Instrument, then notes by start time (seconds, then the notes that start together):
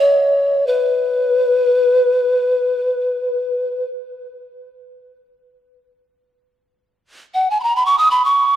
pan flute
0.00 C#5
0.67 B4
7.34 F#5
7.50 G#5
7.60 A#5 B5
7.76 B5
7.86 C#6
7.98 D#6
8.11 B5
8.25 C#6